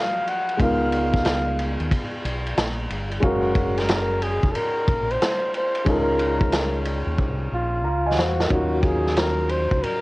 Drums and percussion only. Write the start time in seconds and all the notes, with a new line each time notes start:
0.27 ride
0.49 ride
0.60 kick, ride
0.92 ride
1.14 kick, snare
1.25 snare, hi-hat pedal, ride
1.59 ride
1.80 ride
1.91 kick, ride
2.25 ride
2.46 ride
2.57 snare, hi-hat pedal, ride
2.90 ride
3.12 ride
3.22 kick, ride
3.55 kick, ride
3.77 snare, ride
3.88 snare, hi-hat pedal, ride
4.22 ride
4.43 kick, ride
4.55 ride
4.88 kick, ride
5.11 ride
5.22 snare, hi-hat pedal, ride
5.54 ride
5.75 ride
5.86 kick, ride
6.19 ride
6.41 kick
6.52 snare, hi-hat pedal, ride
6.85 ride
7.18 kick
8.19 snare
8.40 snare
8.50 kick, ride
8.83 kick, ride
9.07 snare
9.17 snare, hi-hat pedal, ride
9.49 ride
9.71 kick
9.84 ride